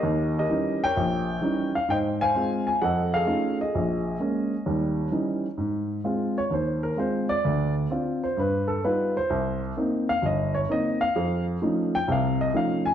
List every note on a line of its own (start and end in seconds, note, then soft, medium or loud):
0.00 0.43 D#2 medium
0.00 0.37 G4 medium
0.00 0.38 A#4 medium
0.00 0.38 D#5 medium
0.39 1.25 G4 medium
0.39 0.83 A#4 medium
0.39 0.84 D#5 medium
0.50 0.82 E3 soft
0.50 0.82 G3 soft
0.50 0.82 C#4 soft
0.50 0.83 D#4 medium
0.84 1.71 A#4 medium
0.84 1.72 C#5 medium
0.84 1.71 G5 loud
0.97 1.37 A#1 medium
1.42 1.75 E3 medium
1.42 1.75 G3 soft
1.42 1.75 C#4 soft
1.42 1.75 D#4 medium
1.75 1.90 F5 medium
1.88 2.29 G#2 medium
1.88 2.21 C5 medium
1.88 2.79 D#5 medium
1.88 1.97 G5 medium
2.21 2.78 C5 medium
2.21 2.78 F5 medium
2.21 2.64 G#5 loud
2.35 2.68 G#3 soft
2.35 2.68 C4 soft
2.35 2.68 F4 medium
2.67 2.81 G#5 medium
2.82 3.22 F2 medium
2.82 3.14 A4 medium
2.82 3.60 D#5 medium
2.82 3.14 F#5 medium
3.14 3.62 G#4 medium
3.14 3.71 A4 medium
3.14 3.56 F5 medium
3.26 3.60 A3 medium
3.26 3.60 C#4 soft
3.26 3.60 D#4 soft
3.26 3.60 F4 soft
3.61 4.65 G#4 soft
3.61 5.10 D#5 medium
3.75 4.15 A#1 medium
4.20 4.53 G#3 soft
4.20 4.53 A#3 soft
4.20 4.53 C#4 medium
4.66 5.07 D#2 medium
4.66 5.07 G3 medium
5.12 5.45 E3 soft
5.12 5.45 G3 soft
5.12 5.45 C#4 soft
5.12 5.45 D#4 medium
5.57 5.99 G#2 medium
6.04 6.38 G#3 medium
6.04 6.38 C4 soft
6.04 6.38 F4 medium
6.38 6.52 C#5 medium
6.51 6.92 D#2 medium
6.51 6.83 C5 medium
6.83 6.98 A#4 medium
6.97 7.30 G#3 soft
6.97 7.31 C4 soft
6.97 7.31 F4 medium
6.97 7.29 C5 medium
7.29 7.72 D5 medium
7.45 7.85 D2 medium
7.91 8.24 C4 medium
7.91 8.24 D4 soft
7.91 8.24 F4 medium
8.24 8.38 C5 medium
8.37 8.77 G2 medium
8.37 8.69 B4 medium
8.68 8.83 A4 medium
8.84 9.17 G3 soft
8.84 9.17 B3 soft
8.84 9.17 D#4 soft
8.84 9.17 F4 medium
8.84 9.14 B4 medium
9.17 9.59 C5 medium
9.30 9.70 C2 medium
9.77 10.09 A#3 medium
9.77 10.10 C4 soft
9.77 10.10 D#4 medium
10.09 10.23 F5 medium
10.22 10.63 G1 medium
10.22 10.55 D#5 medium
10.54 10.69 C#5 medium
10.69 11.02 A#3 medium
10.69 11.02 C4 soft
10.69 11.02 D#4 medium
10.69 11.01 D#5 medium
11.01 11.44 F5 medium
11.16 11.56 F2 medium
11.62 11.95 F3 medium
11.62 11.95 A3 soft
11.62 11.95 C#4 soft
11.62 11.95 D#4 medium
11.95 12.09 G5 medium
12.08 12.48 C2 medium
12.08 12.48 C3 medium
12.12 12.40 F5 medium
12.41 12.55 D#5 medium
12.54 12.87 F3 soft
12.54 12.87 A3 soft
12.54 12.87 C#4 soft
12.54 12.87 D#4 medium
12.54 12.86 F5 medium
12.86 12.94 G#5 medium